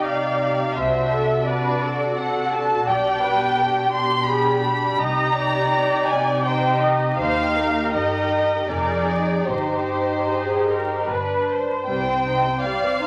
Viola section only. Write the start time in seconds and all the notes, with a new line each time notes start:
0.05 D5
0.77 C5
1.13 A4
1.48 B4
1.83 A4
2.18 A4
2.88 D5
3.24 B4
3.59 G4
3.94 G4
4.29 G#4
4.64 G4
5.00 D#5
5.35 D5
6.45 C5
6.81 D#5
7.19 C5
7.57 A#4
8.69 A#4
9.08 G#4
9.48 G4
10.28 G#4
10.68 A#4
11.09 B4
11.50 C5
11.88 C5
12.62 D5
12.98 C5